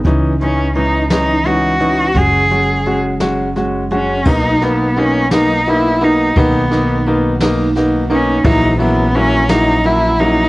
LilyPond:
<<
  \new Staff \with { instrumentName = "Cello" } { \time 6/8 \key b \major \tempo 4. = 57 r8 cis'8 dis'8 dis'8 fis'4 | gis'4 r4. cis'8 | dis'8 b8 cis'8 dis'8 e'8 dis'8 | b4 r4. cis'8 |
dis'8 b8 cis'8 dis'8 e'8 dis'8 | }
  \new Staff \with { instrumentName = "Grand piano" } { \time 6/8 \key b \major <e cis' dis'>8 <e cis' dis'>8 <e cis' dis'>8 <e cis' dis'>8 <e cis' dis'>8 <e cis' dis'>8 | <gis cis' fis'>8 <gis cis' fis'>8 <gis cis' fis'>8 <gis cis' fis'>8 <gis cis' fis'>8 <gis cis' fis'>8 | <ais b dis'>8 <ais b dis'>8 <ais b dis'>8 <ais b dis'>8 <ais b dis'>8 <ais b dis'>8 | <ais b dis'>8 <ais b dis'>8 <ais b dis'>8 <ais b dis'>8 <ais b dis'>8 <ais b dis'>8 |
<fis ais e'>8 <fis ais e'>8 <fis ais e'>8 <fis ais e'>8 <fis ais e'>8 <fis ais e'>8 | }
  \new Staff \with { instrumentName = "Steel-string acoustic guitar" } { \time 6/8 \key b \major e8 e8 gis8 e8 gis8 e8 | fis8 fis8 gis8 fis8 gis8 fis8 | r8 dis'8 fis'4 fis'8 dis'8 | dis8 dis'8 fis'8 dis'8 fis'8 dis'8 |
e8 cis'8 fis'8 cis'8 fis'8 cis'8 | }
  \new Staff \with { instrumentName = "Upright bass" } { \clef bass \time 6/8 \key b \major cis,2. | fis,,2. | b,,2. | b,,2. |
ais,,2. | }
  \new DrumStaff \with { instrumentName = "Drums" } \drummode { \time 6/8 <hh bd>8 hh8 hh8 <hh sn>8 hh8 hh8 | <hh bd>8 hh8 hh8 <hh sn>8 <hh sn>8 hh8 | <cymc bd>8 <cymr sn>8 cymr8 <cymr sn>8 cymr8 cymr8 | <bd cymr>8 <cymr sn>8 cymr8 <cymr sn>8 <cymr sn>8 cymr8 |
<bd cymr>8 cymr8 cymr8 <cymr sn>8 cymr8 cymr8 | }
>>